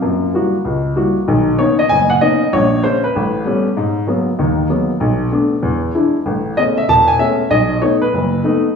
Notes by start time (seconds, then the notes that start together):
0.02 F#2 A#3
0.34 G3 A#3 E4 F#4
0.65 C#2
0.96 G3 A#3 E4 F#4
1.28 B1 D#3
1.59 A#3 B3 C#4 D#4 C#5
1.79 D#5
1.89 F#1 G#5
2.10 F#5
2.21 A#3 B3 C#4 D#4 D#5
2.53 A#1 C#5
2.84 G#3 A#3 C#4 C5
3.04 B4
3.16 A1
3.45 G3 A3 B3 C#4
3.77 G#2
4.07 F#3 G#3 A#3 B3
4.39 D#2 D#3
4.69 F#3 G#3 A#3 B3
5.00 B1
5.32 A3 B3 D4
5.63 E2
5.95 G#3 D4 E4
6.26 A1
6.57 G#3 A3 B3 C#4 D#5
6.77 E5
6.88 E1 A5
7.08 G#5
7.19 G#3 A3 B3 C#4 E5
7.50 B1 D#5
7.82 A3 B3 D#4 C#5
8.01 B4
8.14 F#1
8.44 A3 B3 D#4